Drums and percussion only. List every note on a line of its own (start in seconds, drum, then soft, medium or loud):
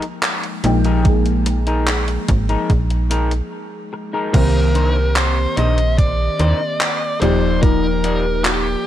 0.02 closed hi-hat soft
0.23 clap loud
0.23 closed hi-hat medium
0.43 closed hi-hat soft
0.64 closed hi-hat medium
0.84 closed hi-hat soft
1.05 kick loud
1.05 closed hi-hat medium
1.26 closed hi-hat soft
1.46 closed hi-hat medium
1.67 closed hi-hat soft
1.87 clap loud
1.87 closed hi-hat medium
2.08 closed hi-hat soft
2.28 kick loud
2.28 closed hi-hat loud
2.49 closed hi-hat soft
2.70 kick loud
2.70 closed hi-hat medium
2.90 closed hi-hat soft
3.11 closed hi-hat loud
3.31 closed hi-hat soft
4.34 kick loud
4.34 closed hi-hat medium
4.34 crash loud
4.75 closed hi-hat medium
5.16 clap loud
5.16 closed hi-hat medium
5.57 closed hi-hat medium
5.78 closed hi-hat soft
5.99 kick loud
5.99 closed hi-hat medium
6.39 closed hi-hat medium
6.81 clap loud
6.81 closed hi-hat medium
7.22 closed hi-hat medium
7.63 kick loud
7.63 closed hi-hat medium
8.04 closed hi-hat medium
8.45 clap loud
8.45 closed hi-hat medium